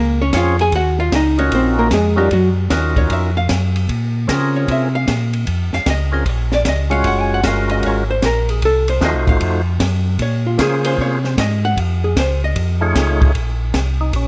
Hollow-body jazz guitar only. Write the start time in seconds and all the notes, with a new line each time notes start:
Already playing: A#3 A#4
0.22 C#4 C#5
0.36 F4 F5
0.61 G#4 G#5
0.76 F#4 F#5
1.00 F4 F5
1.15 D#4 D#5
1.39 C#4 C#5
1.55 C4 C5
1.79 A#3 A#4
1.94 G#3 G#4
2.18 G3 G4
2.33 F#3 F#4
2.98 C#5
3.12 E5
3.37 F5
4.56 C#5
4.71 E5
4.95 F5
5.74 F5
5.90 D#5
6.13 C5
6.29 C#5
6.54 D5
6.68 D#5
6.92 F5
7.07 F#5
7.21 G#5
7.34 F#5
7.47 F5
7.71 D#5
7.86 C#5
8.11 C5
8.26 A#4
8.50 G#4
8.65 A4
8.90 C5
9.05 D#5
9.29 F5
10.22 C#5
10.46 F4
10.62 G#4
10.86 C5
11.01 C#5
11.25 C5
11.40 D#5
11.65 F#5
11.80 F5
12.04 G#4
12.20 C5
12.44 D#5